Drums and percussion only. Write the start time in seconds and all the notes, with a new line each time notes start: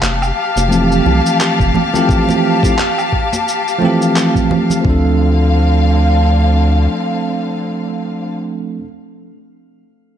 0.03 clap, high conga, shaker
0.22 low woodblock, shaker
0.57 high conga, shaker
0.72 shaker
0.92 shaker
1.06 high conga
1.26 shaker
1.41 clap, shaker
1.60 kick, shaker
1.74 high conga, low conga
1.94 low conga, shaker
2.09 kick, shaker
2.29 high conga, shaker
2.63 kick, shaker
2.79 clap, high conga, shaker
2.98 low woodblock, shaker
3.12 kick
3.33 high conga, shaker
3.48 shaker
3.68 shaker
3.82 high conga
4.02 shaker
4.16 clap, shaker
4.35 kick, shaker
4.51 high conga, low conga
4.70 low conga, shaker
4.85 kick